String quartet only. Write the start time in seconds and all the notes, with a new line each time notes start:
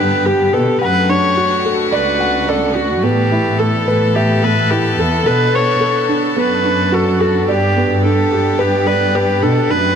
Already playing: D3 B3 G4
0.81 A3 D4 F#4
3.03 E3 B3 A4
5.27 D4
7.48 B3 G4
9.72 A3 F#4